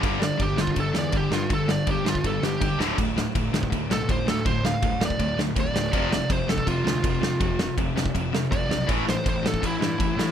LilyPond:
<<
  \new Staff \with { instrumentName = "Lead electric guitar" } { \time 4/4 \key g \lydian \tempo 4 = 163 r8 d''8 g'8 f'8 a'8 d''8 g'8 f'8 | a'8 d''8 g'8 f'8 a'8 g'4 r8 | r2 r8 a'8 c''8 a'8 | c''8 f''4 d''4 r8 d''4~ |
d''8 d''8 c''8 a'8 f'2~ | f'4 r2 d''4 | r8 c''8 c''8 a'8 e'2 | }
  \new Staff \with { instrumentName = "Distorted electric guitar" } { \clef bass \time 4/4 \key g \lydian <g, d g>8 <g, d>8 <g, d>8 <g, d>8 <g, d>8 <g, d>8 <g, d>8 <g, d>8 | <g, d>8 <g, d>8 <g, d>8 <g, d>8 <g, d>8 <g, d>8 <g, d>8 <d, a, d>8 | <d, a,>8 <d, a,>8 <d, a,>8 <d, a,>8 <d, a,>8 <d, a,>8 <d, a,>8 <d, a,>8 | <d, a,>8 <d, a,>8 <d, a,>8 <d, a,>8 <d, a,>8 <d, a,>8 <d, a,>8 <d, a,>8 |
<f, c f>8 <f, c>8 <f, c>8 <f, c>8 <f, c>8 <f, c>8 <f, c>8 <f, c>8 | <f, c>8 <f, c>8 <f, c>8 <f, c>8 <f, c>8 <f, c>8 <f, c>8 <f, c>8 | <a, e a>8 <a, e>8 <a, e>8 <a, e>8 <a, e>8 <a, e>8 <a, e>8 <a, e>8 | }
  \new Staff \with { instrumentName = "Overdriven electric guitar" } { \clef bass \time 4/4 \key g \lydian <g, d g>8 <g, d>8 <g, d>8 <g, d>8 <g, d>8 <g, d>8 <g, d>8 <g, d>8 | <g, d>8 <g, d>8 <g, d>8 <g, d>8 <g, d>8 <g, d>8 <g, d>8 <d, a, d>8 | <d, a,>8 <d, a,>8 <d, a,>8 <d, a,>8 <d, a,>8 <d, a,>8 <d, a,>8 <d, a,>8 | <d, a,>8 <d, a,>8 <d, a,>8 <d, a,>8 <d, a,>8 <d, a,>8 <d, a,>8 <d, a,>8 |
<f, c f>8 <f, c>8 <f, c>8 <f, c>8 <f, c>8 <f, c>8 <f, c>8 <f, c>8 | <f, c>8 <f, c>8 <f, c>8 <f, c>8 <f, c>8 <f, c>8 <f, c>8 <f, c>8 | <a, e a>8 <a, e>8 <a, e>8 <a, e>8 <a, e>8 <a, e>8 <a, e>8 <a, e>8 | }
  \new Staff \with { instrumentName = "Picked electric bass" } { \clef bass \time 4/4 \key g \lydian g,,4 g,,8 g,,8 g,,8 e,8 g,,8 g,8 | g,,4 g,,8 g,,8 g,,8 g,,8 g,,8 d,,8 | d,,4 d,,8 d,,8 d,,8 b,,8 d,,8 d,8 | d,,4 d,,8 d,,8 d,,8 d,,8 d,,8 d,,8 |
f,,4 f,,8 f,,8 f,,8 d,8 f,,8 f,8 | f,,4 f,,8 f,,8 f,,8 f,,8 f,,8 b,,8 | a,,4 a,,8 a,,8 a,,8 g,8 a,,8 a,8 | }
  \new DrumStaff \with { instrumentName = "Drums" } \drummode { \time 4/4 <cymc bd>8 sn8 <cymc bd>8 sn16 bd16 <cymc bd>8 sn8 <cymc bd>8 sn8 | <cymc bd>8 sn8 <cymc bd>8 sn16 bd16 <cymc bd>8 sn8 <cymc bd>8 sn8 | <cymc bd>8 sn8 <cymc bd>8 sn16 bd16 <cymc bd>8 sn8 <cymc bd>8 sn8 | <cymc bd>8 sn8 <cymc bd>8 sn16 bd16 <cymc bd>8 sn8 <cymc bd>8 sn8 |
<cymc bd>8 sn8 <cymc bd>8 sn16 bd16 <cymc bd>8 sn8 <cymc bd>8 sn8 | <cymc bd>8 sn8 <cymc bd>8 sn16 bd16 <cymc bd>8 sn8 <cymc bd>8 sn8 | <cymc bd>8 sn8 <cymc bd>8 sn16 bd16 <cymc bd>8 sn8 <cymc bd>8 sn8 | }
>>